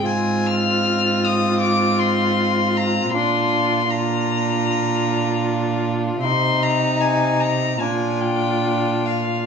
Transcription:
<<
  \new Staff \with { instrumentName = "Violin" } { \time 4/4 \key bes \mixolydian \tempo 4 = 77 aes''8 f'''4 ees'''8 d'''8 c'''4 bes''8 | c'''4 bes''2~ bes''8 r8 | c'''8 bes''8 aes''8 bes''8 aes''8 g''4 f''8 | }
  \new Staff \with { instrumentName = "Violin" } { \time 4/4 \key bes \mixolydian f'1 | f'4 f'2. | ees'2 f'2 | }
  \new Staff \with { instrumentName = "Viola" } { \time 4/4 \key bes \mixolydian c'1 | d'4 d'2. | c'2 d'2 | }
  \new Staff \with { instrumentName = "Cello" } { \clef bass \time 4/4 \key bes \mixolydian aes,1 | bes,1 | c2 bes,2 | }
>>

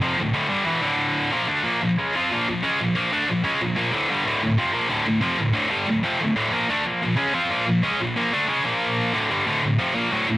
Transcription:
\new Staff \with { instrumentName = "Distorted electric guitar" } { \clef bass \time 4/4 \key d \minor \tempo 4 = 184 <f, c f>8 <d, a,>8 <d, a, d>8 <g, d g>8 <e, b, e>8 <d, a, d>4. | <bes, f bes>8 <d a d'>8 <bes, f bes>8 <bes, f>8 <cis gis cis'>8 <f c' f'>8 <bes, f bes>8 <bes, f>8 | <cis gis cis'>8 <bes, f>8 <bes, f bes>8 <d a d'>8 <bes, f>8 <cis gis cis'>8 <bes, f>8 <bes, f bes>8 | <d, a, d>8 <g, d g>8 <d, a, d>8 <d, a,>8 <f, c f>8 <bes, f bes>8 <d, a, d>8 <d, a,>8 |
<f, c f>8 <d, a,>8 <d, a, d>8 <g, d g>8 <d, a,>8 <f, c f>8 <d, a,>8 <d, a, d>8 | <bes, f bes>8 <d a d'>8 <bes, f bes>8 <bes, f>8 <cis gis cis'>8 <f c' f'>8 <bes, f bes>8 <bes, f>8 | <cis gis cis'>8 <bes, f>8 <bes, f bes>8 <d a d'>8 <cis gis cis'>8 <bes, f bes>4. | <d, a, d>8 <g, d g>8 <d, a, d>8 <d, a,>8 <f, c f>8 <bes, f bes>8 <d, a, d>8 <d, a,>8 | }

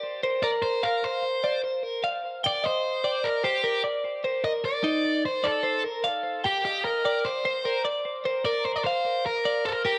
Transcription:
<<
  \new Staff \with { instrumentName = "Clean electric guitar" } { \time 5/4 \key bes \major \tempo 4 = 150 d''8 c''8 bes'4 f''4 r8 d''8 c''8 bes'8 | f''4 g''8 ees''4 d''4 c''8 bes'8 d''8~ | d''8 c''8 bes'4 ees'4 r8 d''8 c''8 bes'8 | f''4 g''8 ees''4 d''4 c''8 bes'8 d''8~ |
d''8 c''8 bes'4 f''4 r8 d''8 c''8 bes'8 | }
  \new Staff \with { instrumentName = "Overdriven electric guitar" } { \time 5/4 \key bes \major r4 d''8 c''8 bes'8 c''4. r4 | r4 d''8 c''4. bes'8 g'4 r8 | r4 ees''8 d''4. c''8 a'4 r8 | r4 g'8 g'8 bes'4 c''4. r8 |
r4 d''8 c''16 d''16 c''4 bes'4 a'8 g'8 | }
>>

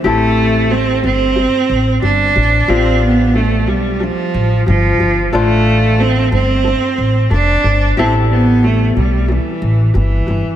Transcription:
<<
  \new Staff \with { instrumentName = "Ukulele" } { \time 4/4 \key a \minor \tempo 4 = 91 <c' e' g' a'>4 <c' g'>8 <c' g'>8 <c' g'>8 r8 <c' g'>8 <d' g'>8 | <d' f' g'>4 <d' g'>8 <d' g'>8 <d' g'>8 r8 <d' g'>8 <d' g'>8 | <d' f' a' c''>4 <d' a'>8 <d' a'>8 <d' a'>8 r8 <d' a'>8 <d' a'>8 | <e' g' a'>4 <c' g'>8 <c' g'>8 <c' g'>8 r8 <c' g'>8 <c' g'>8 | }
  \new Staff \with { instrumentName = "Cello" } { \time 4/4 \key a \minor a4 c'8 c'4. d'4 | c'8 b8 a8 g8 f4 f4 | a4 c'8 c'4. d'4 | c'8 b8 a8 g8 e4 e4 | }
  \new Staff \with { instrumentName = "Upright bass" } { \clef bass \time 4/4 \key a \minor a,,4. g,,8. r16 a,,8 g,,8 a,,8 | a,,4. b,,8. r16 a,,8 g,,8 g,,8 | a,,4. g,,8. r16 a,,8 f,,8 g,,8 | a,,4. b,,8. r16 a,,8 g,,8 g,,16 r16 | }
>>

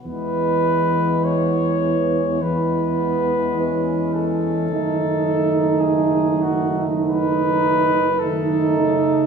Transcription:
<<
  \new Staff \with { instrumentName = "Flugelhorn" } { \time 4/4 \key e \major \tempo 4 = 52 b'4 cis''4 b'4. a'8~ | a'4 gis'8 fis'8 b'4 a'4 | }
  \new Staff \with { instrumentName = "French horn section" } { \time 4/4 \key e \major b2 b4 cis'4 | dis'2. dis'4 | }
  \new Staff \with { instrumentName = "Trombone section" } { \clef bass \time 4/4 \key e \major gis2 gis2 | a2. a4 | }
  \new Staff \with { instrumentName = "Euphonium" } { \clef bass \time 4/4 \key e \major e2 e2 | dis2~ dis8. r16 dis8 cis8 | }
  \new Staff \with { instrumentName = "Tuba" } { \clef bass \time 4/4 \key e \major e,1 | fis,,2.~ fis,,8. r16 | }
>>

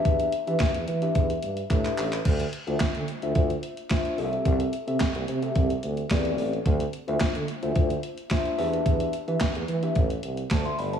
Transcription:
<<
  \new Staff \with { instrumentName = "Tine electric piano" } { \time 4/4 \key d \dorian \tempo 4 = 109 <d' g' b' e''>8 r16 <d' g' b' e''>8 r8 <d' g' b' e''>8 r8. <d' g' b' e''>8. r16 | r8. <d' f' c'' e''>8 r8 <d' f' c'' e''>8 r8. <d' f' c'' e''>8 <c' g' a' ees'' e''>8~ | <c' g' a' ees'' e''>8 r16 <c' g' a' e''>8 r8 <c' g' a' e''>8 r8. <c' g' a' d''>8. r16 | r8. <d' f' c'' e''>8 r8 <d' f' c'' e''>8 r8. <d' f' c'' e''>8 <d' g' b' e''>8~ |
<d' g' b' e''>8 r16 <d' g' b' e''>8 r8 <d' g' b' e''>16 r4 <c'' a''>16 <e'' c'''>16 <d'' b''>16 <c'' a''>16 | }
  \new Staff \with { instrumentName = "Tuba" } { \clef bass \time 4/4 \key d \dorian e,8 r16 e16 r16 e,16 e8 e,8 g,8 a,8 a,,8 | d,8 r16 d,16 d16 d16 r16 d,16 d,8 r4 c,8 | c,8 r16 c16 r16 c,16 c8 c,8 d,8 e,8 a,,8 | d,8 r16 d,16 d16 d16 r16 d,16 d,8 r4 e,8 |
e,8 r16 e16 r16 e,16 e8 a,,8 c,8 d,8 g,,8 | }
  \new DrumStaff \with { instrumentName = "Drums" } \drummode { \time 4/4 <hh bd>16 hh16 hh16 hh16 <hc hh bd sn>16 hh16 hh16 hh16 <hh bd>16 hh16 hh16 hh16 <hc hh bd>16 <hc hh>16 <hc hho>16 <hc hh>16 | <cymc bd>16 hh16 hh16 hh16 <hc hh bd sn>16 hh16 hh16 hh16 <hh bd>16 hh16 hh16 hh16 <hc hh bd sn>16 hh16 hho16 hh16 | <hh bd>16 hh16 hh16 hh16 <hc hh bd sn>16 hh16 hh16 hh16 <hh bd>16 hh16 hh16 hh16 <hc hh bd sn>16 hh16 hho16 hh16 | <hh bd>16 hh16 hh16 hh16 <hc hh bd sn>16 hh16 hh16 hh16 <hh bd>16 hh16 hh16 hh16 <hc hh bd sn>16 hh16 hho16 hh16 |
<hh bd>16 hh16 hh16 hh16 <hc hh bd sn>16 hh16 hh16 hh16 <hh bd>16 hh16 hh16 hh16 <hc hh bd sn>16 hh16 hho16 hh16 | }
>>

